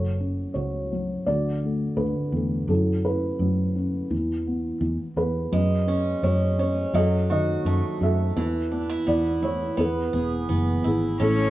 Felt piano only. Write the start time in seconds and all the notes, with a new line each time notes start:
Already playing: F#3 A4 C#5
0.20 C#4
0.54 F#4 C#5
0.92 F#3
1.26 D3 F#4 D5
1.63 A3
1.97 D3 B4
2.34 A3
2.69 F#3 E4 A4
3.05 C#4 E4 B4
3.41 F#3
3.76 C#4
4.10 E3
4.47 B3
4.82 E3
5.17 B3 G#4 B4
5.52 F#3
5.87 C#4
6.23 F#3 C#5
6.58 C#4 C#5
6.94 F#3 A4 D#5
7.30 D#3 D#5
7.65 F#3
8.01 F#4 A4 E5
8.37 E3
8.71 B3
9.06 E4 D5
9.42 E3 C#5
9.78 E3 G#4 B4
10.14 B3
10.50 E3
10.85 B3 E4 G#4
11.21 A3 E4 A4